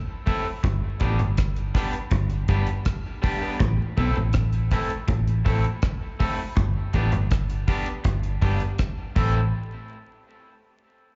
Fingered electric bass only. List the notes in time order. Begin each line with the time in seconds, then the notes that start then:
0.64 G1
1.01 A1
1.20 G1
2.12 G1
2.49 G1
3.60 A1
3.98 B1
4.17 A1
5.09 A1
5.46 A1
6.57 G1
6.94 A1
7.13 G1
8.05 G1
8.43 G1
9.17 A1